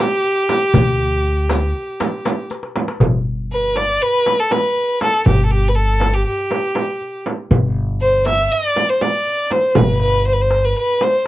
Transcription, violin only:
Already playing: G4
3.53 B4
3.77 D5
4.02 B4
4.40 A4
4.52 B4
5.02 A4
5.27 G4
5.45 A4
5.51 G4
5.68 B4
5.75 A4
6.14 G4
6.26 G4
8.01 C5
8.27 E5
8.52 D5
8.90 C5
9.02 D5
9.51 C5
9.77 B4
10.01 B4
10.27 C5
10.33 B4
10.41 C5
10.65 B4
10.78 B4
11.03 C5

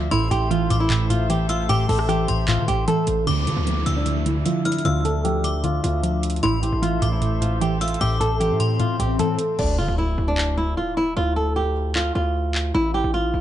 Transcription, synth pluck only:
Already playing: D3 F3
0.11 A2
0.31 A2
0.51 E3
0.70 A2
0.90 A2
1.10 A2
1.30 E3
1.69 A2
1.89 A2
2.09 E3
2.28 A2
2.48 A2
2.68 A2
2.88 E3
3.27 D3
3.47 D3
3.67 F3
3.87 D3
4.06 D3
4.26 D3
4.46 F3
4.85 D3
5.04 D3
5.25 F3
5.44 D3
5.64 D3
5.84 D3
6.03 F3
6.43 A2
6.62 A2
6.82 E3
7.02 A2
7.22 A2
7.42 A2
7.61 E3
8.01 A2
8.20 A2
8.40 E3
8.60 A2
8.80 A2
9.00 A2
9.19 E3

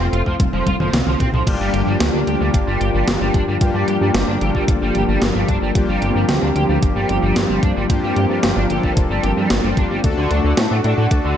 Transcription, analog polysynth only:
1.46 A#3 D4 F4 G4
2.27 A#3 D4 F4 G4
3.61 A#3 D4 F4 G4
4.41 A#3 D4 F4 A4
5.75 A#3 D4 F4 G4
6.56 A#3 D4 F4 G4
7.90 A#3 D4 F4 G4
8.70 A#3 D4 F4 A4
9.77 A#3 D4 F4 G4
10.04 A3 D4 F#4 A4
10.84 A3 D4 F#4 A4

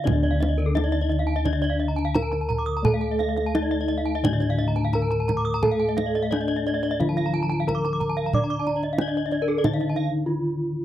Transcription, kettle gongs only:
Already playing: D3
0.05 D4
0.10 D2
0.75 D#4
2.15 D#4
2.84 A4
3.55 D#4
4.24 A2
4.93 D#4
5.63 A4
6.32 D#4
7.01 D3
7.68 D#4
8.35 D5
9.00 D#4
9.65 D3
10.28 D#4

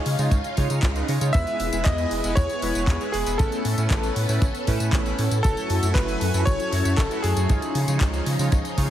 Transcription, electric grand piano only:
1.33 E5
1.84 D#5
2.35 C#5
3.12 G#4
3.38 A4
5.43 A4
5.94 B4
6.45 C#5
6.97 A4
7.22 G#4

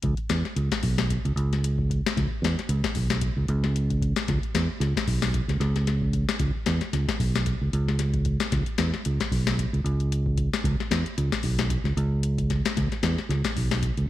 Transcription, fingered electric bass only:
0.03 C#2
0.30 E2
0.56 C#2
0.83 B1
1.25 C#2
1.36 C#2
2.17 C#2
2.31 muted fingered electric bass stroke
2.42 E2
2.69 C#2
2.96 B1
3.37 C#2
3.49 C#2
4.29 C#2
4.54 E2
4.80 C#2
5.07 B1
5.48 C#2
5.60 C#2
6.40 C#2
6.55 muted fingered electric bass stroke
6.67 E2
6.93 C#2
7.20 B1
7.61 C#2
7.73 C#2
8.52 C#2
8.67 muted fingered electric bass stroke
8.79 E2
9.06 C#2
9.31 B1
9.73 C#2
9.84 C#2
10.64 C#2
10.91 E2
11.18 C#2
11.44 B1
11.84 C#2
11.97 C#2
12.77 C#2
12.92 muted fingered electric bass stroke
13.03 E2
13.29 C#2
13.56 B1
13.97 C#2

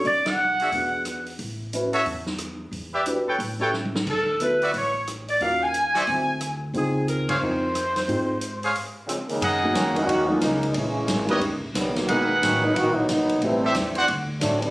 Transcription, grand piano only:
0.73 B3 D4 F#4 G#4
1.73 C#4 E4 F#4 B4
3.06 D4 F#4 G4 B4
3.60 C#4 E4 G4 A4
4.40 B3 E4 F#4 A4
5.41 C#4 F4 F#4 A#4
6.07 C4 E4 F#4 C5
6.74 C4 D#4 F4 G#4
7.42 C4 D#4 F4 A#4
8.08 C4 D#4 F4 G#4
9.63 A#3 C#4 D#4 F#4 G#4
10.29 F#3 A#3 C#4 D#4 F4
10.75 G#3 A#3 C#4 E4 G#4
11.28 G3 B3 C#4 D#4 A#4
12.09 G#3 B3 D#4 F#4 A#4
13.43 A3 C4 E4 G4 B4

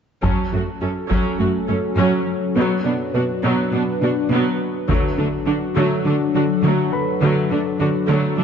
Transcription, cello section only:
0.23 F#2
0.53 F#2
0.82 F#2
1.11 F#2
1.40 F#2
1.69 F#2
1.98 F#2
2.56 B2
2.85 B2
3.14 B2
3.44 B2
3.73 B2
4.02 B2
4.31 B2
4.89 D3
5.18 D3
5.47 D3
5.77 D3
6.06 D3
6.36 D3
6.64 D3
7.21 D3
7.51 D3
7.80 D3
8.09 D3
8.38 D3

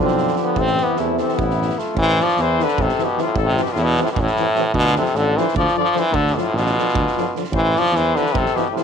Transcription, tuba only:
Already playing: B1
0.56 A1
0.99 E2
1.39 A1
1.95 A1
2.38 E2
2.78 A1
3.35 A1
3.76 E2
4.16 A1
4.74 D2
5.14 A1
5.54 D2
6.11 D2
6.53 A1
6.94 D2
7.51 A1
7.92 E2
8.33 A1

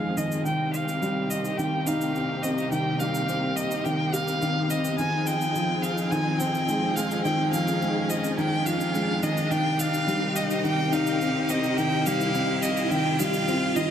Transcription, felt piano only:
Already playing: D#3 F3 G#3
0.17 D#3
0.45 D#3
1.02 G3
1.58 D#3
1.87 D#4
2.16 C4
2.44 C4
2.72 D#3
3.00 G3
3.29 C4
3.86 D#3
4.14 G4
4.42 D#3
4.70 C4
4.99 D#3
5.55 F3
6.12 D#3
6.40 C4
6.68 G#3
6.97 G#3
7.25 D#3
7.54 F3
7.81 G#3
8.38 D#3
8.67 F3
8.95 G#3
9.23 D#3
9.51 D#3
10.07 G3
10.64 D#3
10.93 D#4
11.21 C4
11.49 C4
11.78 D#3
12.06 G3
12.35 C4
12.91 D#3
13.20 G3
13.48 C4
13.76 D#3

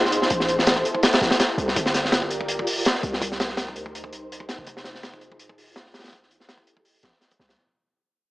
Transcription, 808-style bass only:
Already playing: D#1
0.31 A1
1.21 A1
1.58 C2
1.76 G1
3.03 C2
3.76 D2
4.12 C2
4.58 F1
5.40 D#1
6.13 A1
7.03 A1
7.40 C2

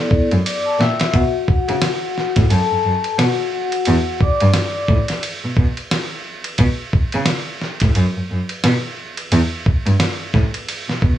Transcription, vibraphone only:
Already playing: B3 E4 A4 D5
0.45 D5 D6
0.66 A5
0.80 E5 G5 E6
1.00 E5
1.15 F#4 F#5
1.48 F#4 F#5
2.51 A4 A5
3.19 F#4 F#5
3.54 F#4 F#5
4.21 D5 D6

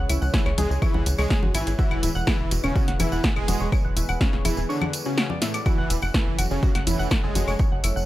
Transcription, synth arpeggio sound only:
0.09 E4 E5
0.22 F#5 F#6
0.34 G#4 G#5
0.46 C#5 C#6
0.58 G#4 G#5
0.70 G#4 G#5
0.82 C#5 C#6
0.94 F#5 F#6
1.18 C#5 C#6
1.30 G#4 G#5
1.43 F#4 F#5
1.54 G#5 G#6
1.67 G#4 G#5
1.79 F#4 F#5
1.91 F#5 F#6
2.03 E4 E5
2.15 F#5 F#6
2.27 G#4 G#5
2.51 F#4 F#5
2.64 C#5 C#6
2.76 F#4 F#5
2.88 F#5 F#6
3.00 E4 E5
3.12 F#5 F#6
3.24 G#4 G#5
3.36 G#4 G#5
3.48 F#4 F#5
3.60 C#5 C#6
3.72 C#5 C#6
3.85 F#5 F#6
3.97 E4 E5
4.09 F#5 F#6
4.21 G#4 G#5
4.33 C#5 C#6
4.45 G#4 G#5
4.57 G#4 G#5
4.69 C#5 C#6
4.81 F#5 F#6
5.06 F#4 F#5
5.18 F#4 F#5
5.30 D5 D6
5.42 E4 E5
5.54 D5 D6
5.66 F#4 F#5
5.78 F#5 F#6
5.90 E4 E5
6.02 F#5 F#6
6.14 A4 A5
6.38 F#4 F#5
6.51 C#5 C#6
6.63 F#4 F#5
6.75 F#5 F#6
6.87 E4 E5
6.99 F#5 F#6
7.11 A4 A5
7.23 A4 A5
7.35 F#4 F#5
7.48 C#5 C#6
7.60 C#5 C#6
7.72 F#5 F#6
7.84 E4 E5
7.96 F#5 F#6

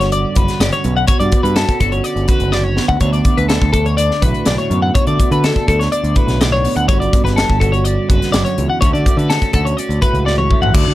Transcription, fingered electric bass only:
Already playing: G1
0.36 F#1
0.60 F#1
0.85 B1
1.20 G2
1.44 G2
1.80 G1
2.16 G1
2.40 F#1
2.89 D2
3.00 D2
3.38 D2
3.62 D2
4.22 B1
4.46 B1
4.70 F#2
5.07 D3
5.31 D3
5.68 D2
6.03 D2
6.27 B1
6.76 D2
6.89 G1
7.24 G1
7.49 G1
8.10 F#1
8.34 F#1
8.58 C#2
8.81 D2
8.93 D3
9.17 D3
9.54 D2
9.89 D2
10.13 C#2
10.62 A1
10.74 D2
10.87 D3

